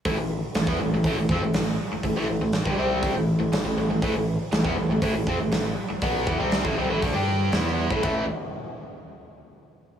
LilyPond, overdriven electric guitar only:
\new Staff \with { instrumentName = "Overdriven electric guitar" } { \clef bass \time 4/4 \key a \minor \tempo 4 = 120 <a, e>16 <a, e>8 r16 <a, e>16 <e b>16 <a, e>16 <a, e>16 <a, e>16 <a, e>16 <f c'>16 <a, e>16 <a, e>8 r8 | <a, e>16 <a, e>16 <a, e>16 <a, e>8 <g, d>16 <c g c'>8. <a, e>8 <a, e>16 <a, e>16 <a, e>16 <a, e>16 <a, e>16 | <a, e>16 <a, e>8 r16 <a, e>16 <e b>16 <a, e>16 <a, e>16 <a, e>16 <a, e>16 <f c'>16 <a, e>16 <a, e>8 r8 | <b, fis b>8 <e b>16 <c g c'>8 <a, e>16 <c g>16 <a, e>16 <d a>16 <g d' g'>8. <e b e'>8. <a, e>16 |
<a, e a>8 r2. r8 | }